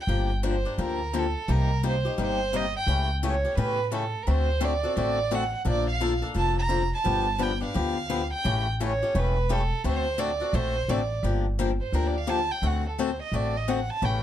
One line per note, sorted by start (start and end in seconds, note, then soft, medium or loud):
0.01 0.31 G5 medium
0.07 0.64 G1 medium
0.07 0.30 D3 medium
0.07 0.30 F3 medium
0.07 0.30 A#3 medium
0.07 0.30 D4 medium
0.07 0.30 G4 medium
0.43 0.55 D3 medium
0.43 0.55 F3 medium
0.43 0.55 A#3 medium
0.43 0.55 D4 medium
0.43 0.55 G4 medium
0.49 0.79 C5 medium
0.65 0.78 A#3 soft
0.65 0.77 D4 soft
0.65 0.78 G4 medium
0.78 1.34 D2 medium
0.78 1.00 D3 medium
0.78 1.00 F3 medium
0.78 1.00 A#3 medium
0.78 1.00 D4 medium
0.78 1.00 G4 medium
0.84 1.20 A#4 medium
1.13 1.25 D3 medium
1.13 1.25 F3 medium
1.13 1.25 A#3 medium
1.13 1.25 D4 medium
1.13 1.25 G4 medium
1.19 1.53 A4 medium
1.48 2.04 C2 medium
1.48 1.69 C3 medium
1.48 1.70 G3 medium
1.48 1.70 A#3 medium
1.48 1.70 D#4 medium
1.48 1.70 G4 medium
1.48 1.85 A#4 loud
1.83 1.94 C3 medium
1.83 1.94 G3 medium
1.83 1.95 A#3 medium
1.83 1.95 D#4 medium
1.83 1.95 G4 medium
1.88 2.18 C5 medium
2.05 2.17 A#3 soft
2.05 2.18 D#4 medium
2.05 2.18 G4 medium
2.18 2.74 G1 medium
2.18 2.39 C3 medium
2.18 2.39 G3 medium
2.18 2.39 A#3 medium
2.18 2.40 D#4 medium
2.18 2.40 G4 medium
2.22 2.58 C5 loud
2.53 2.64 C3 medium
2.53 2.64 G3 medium
2.53 2.64 A#3 medium
2.53 2.65 D#4 medium
2.53 2.65 G4 medium
2.53 2.76 D#5 loud
2.77 3.08 G5 loud
2.87 3.43 C#2 medium
2.87 3.09 C#3 medium
2.87 3.09 E3 medium
2.87 3.09 A3 medium
2.87 3.09 C#4 medium
2.87 3.09 G4 medium
3.23 3.34 C#3 medium
3.23 3.34 E3 loud
3.23 3.34 A3 medium
3.23 3.34 C#4 loud
3.23 3.34 G4 medium
3.23 3.57 C#5 medium
3.45 3.56 A3 soft
3.45 3.57 C#4 soft
3.45 3.57 G4 medium
3.57 4.13 A2 medium
3.57 3.78 C#3 medium
3.57 3.78 E3 medium
3.57 3.79 A3 medium
3.57 3.79 C#4 medium
3.57 3.79 G4 medium
3.57 3.91 B4 loud
3.91 4.03 C#3 medium
3.91 4.03 E3 medium
3.91 4.03 A3 medium
3.91 4.03 C#4 medium
3.91 4.04 G4 medium
3.91 4.25 A4 medium
4.23 4.48 D3 medium
4.23 4.48 A3 medium
4.23 4.32 A#4 medium
4.27 4.83 D2 medium
4.27 4.48 C4 medium
4.27 4.48 F#4 medium
4.27 4.48 A4 medium
4.27 4.66 C5 loud
4.61 4.72 D3 medium
4.61 4.73 A3 medium
4.61 4.73 C4 medium
4.61 4.73 F#4 medium
4.61 4.73 A4 medium
4.61 4.98 D5 medium
4.83 4.96 C4 soft
4.83 4.96 F#4 soft
4.83 4.96 A4 soft
4.97 5.53 A1 medium
4.97 5.18 D3 medium
4.97 5.18 A3 medium
4.97 5.18 C4 medium
4.97 5.18 F#4 medium
4.97 5.18 A4 medium
4.97 5.37 D5 loud
5.31 5.42 D3 medium
5.31 5.43 A3 medium
5.31 5.43 C4 medium
5.31 5.43 F#4 medium
5.31 5.43 A4 medium
5.35 5.62 F#5 medium
5.65 6.21 A#1 medium
5.65 5.87 D3 medium
5.65 5.87 F3 medium
5.65 5.87 A#3 medium
5.65 5.87 D4 medium
5.65 5.87 A4 medium
5.70 5.88 D5 loud
5.90 6.22 F5 medium
6.00 6.12 D3 medium
6.00 6.12 F3 medium
6.00 6.12 A#3 medium
6.00 6.13 D4 medium
6.00 6.13 A4 medium
6.22 6.33 A#3 soft
6.22 6.34 D4 soft
6.22 6.34 A4 medium
6.34 6.91 F1 medium
6.34 6.56 D3 medium
6.34 6.56 F3 medium
6.34 6.56 A#3 medium
6.34 6.57 D4 medium
6.34 6.57 A4 medium
6.38 6.57 A5 loud
6.59 6.91 A#5 loud
6.69 6.81 D3 medium
6.69 6.81 F3 medium
6.69 6.81 A#3 medium
6.69 6.82 D4 medium
6.69 6.81 A4 medium
6.95 7.44 A5 loud
7.04 7.62 G1 medium
7.04 7.26 D3 medium
7.04 7.26 F3 medium
7.04 7.26 B3 medium
7.04 7.26 D4 medium
7.04 7.27 G4 medium
7.38 7.51 D3 medium
7.38 7.51 F3 medium
7.38 7.51 B3 medium
7.38 7.51 D4 medium
7.38 7.51 G4 medium
7.43 7.63 G5 loud
7.60 7.73 B3 soft
7.60 7.74 D4 soft
7.60 7.74 G4 medium
7.64 8.29 F5 medium
7.74 8.31 D2 medium
7.74 7.96 D3 medium
7.74 7.96 F3 medium
7.74 7.96 B3 medium
7.74 7.96 D4 medium
7.74 7.96 G4 medium
8.10 8.21 D3 medium
8.10 8.21 F3 medium
8.10 8.21 B3 medium
8.10 8.21 D4 medium
8.10 8.21 G4 loud
8.34 8.65 G5 loud
8.44 9.01 A1 medium
8.44 8.66 C#3 medium
8.44 8.66 E3 medium
8.44 8.66 A3 medium
8.44 8.66 C#4 medium
8.44 8.66 G4 medium
8.80 8.91 C#3 medium
8.80 8.91 E3 medium
8.80 8.91 A3 medium
8.80 8.92 C#4 loud
8.80 8.92 G4 medium
8.80 9.19 C#5 medium
9.03 9.14 A3 soft
9.03 9.14 C#4 medium
9.03 9.14 G4 medium
9.15 9.70 E1 medium
9.15 9.36 C#3 medium
9.15 9.36 E3 medium
9.15 9.36 A3 medium
9.15 9.36 C#4 medium
9.15 9.36 G4 medium
9.15 9.54 B4 medium
9.49 9.61 C#3 medium
9.49 9.61 E3 medium
9.49 9.61 A3 medium
9.49 9.61 C#4 medium
9.49 9.61 G4 loud
9.49 9.86 A4 medium
9.84 10.40 D2 medium
9.84 10.05 D3 medium
9.84 10.05 A3 medium
9.84 10.06 C4 medium
9.84 10.06 F#4 medium
9.84 10.06 A4 medium
9.84 10.21 C5 loud
10.18 10.30 D3 medium
10.18 10.30 A3 medium
10.18 10.30 C4 medium
10.18 10.30 F#4 medium
10.18 10.30 A4 loud
10.18 10.56 D5 medium
10.40 10.53 C4 soft
10.40 10.53 F#4 medium
10.40 10.53 A4 medium
10.53 10.83 A#1 medium
10.53 10.75 D3 medium
10.53 10.75 A3 medium
10.53 10.75 C4 medium
10.53 10.75 F#4 medium
10.53 10.75 A4 medium
10.53 10.91 C5 loud
10.88 11.18 A1 medium
10.88 11.00 D3 medium
10.88 11.00 A3 medium
10.88 11.00 C4 medium
10.88 11.00 F#4 medium
10.88 11.00 A4 medium
10.88 11.17 D5 medium
11.23 11.79 G1 medium
11.23 11.45 D3 medium
11.23 11.45 F3 medium
11.23 11.45 A#3 medium
11.23 11.45 D4 medium
11.23 11.45 G4 medium
11.59 11.70 D3 medium
11.59 11.70 F3 medium
11.59 11.70 A#3 medium
11.59 11.70 D4 loud
11.59 11.70 G4 medium
11.81 11.96 C5 medium
11.92 12.49 D2 medium
11.92 12.14 D3 medium
11.92 12.15 F3 medium
11.92 12.15 A#3 medium
11.92 12.15 D4 medium
11.92 12.15 G4 medium
11.92 12.09 A#4 medium
12.07 12.20 D5 medium
12.18 12.31 F5 medium
12.27 12.39 D3 medium
12.27 12.39 F3 medium
12.27 12.39 A#3 medium
12.27 12.39 D4 medium
12.27 12.39 G4 medium
12.27 12.53 A5 loud
12.52 12.68 G5 medium
12.62 13.18 D2 medium
12.62 12.84 D3 medium
12.62 12.84 A3 medium
12.62 12.84 C4 medium
12.62 12.84 F#4 medium
12.62 12.84 A4 medium
12.66 12.86 F#5 medium
12.89 13.02 A4 soft
12.98 13.09 D3 medium
12.98 13.09 A3 medium
12.98 13.10 C4 medium
12.98 13.10 F#4 medium
12.98 13.10 A4 medium
12.98 13.21 C5 medium
13.22 13.37 D#5 medium
13.32 13.88 A1 medium
13.32 13.54 D3 medium
13.32 13.54 A3 medium
13.32 13.54 C4 medium
13.32 13.54 F#4 medium
13.32 13.54 A4 medium
13.32 13.58 D5 medium
13.57 13.71 D#5 medium
13.68 13.79 D3 medium
13.68 13.79 A3 medium
13.68 13.79 C4 medium
13.68 13.79 F#4 medium
13.68 13.79 A4 medium
13.68 13.91 F#5 medium
13.90 14.06 A5 loud
14.02 14.23 A1 medium
14.02 14.23 C#3 medium
14.02 14.23 E3 medium
14.02 14.23 A3 medium
14.02 14.23 C#4 medium
14.02 14.23 G4 medium
14.02 14.23 G5 medium